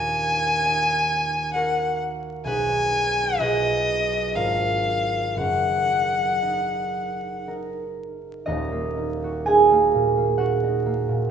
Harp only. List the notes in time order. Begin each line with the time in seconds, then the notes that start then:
Already playing: D#2 A#4
0.65 D#4
1.55 F#4 A#4
2.44 B1 D#4 G#4 B4
3.38 B1 F4 G#4 B4
4.33 G#1 D4 F4 A#4
5.36 F#1
6.42 D#4
7.47 D#4 A#4
8.46 D#1 D#2 D#4 D#5
8.72 A#3
8.97 D#4
9.24 F#4
9.46 D#4 G#4 G#5
9.71 A#3
9.94 A#2
10.17 A#3
10.38 F#4 F#5
10.63 D#4
10.86 A#3
11.09 A#2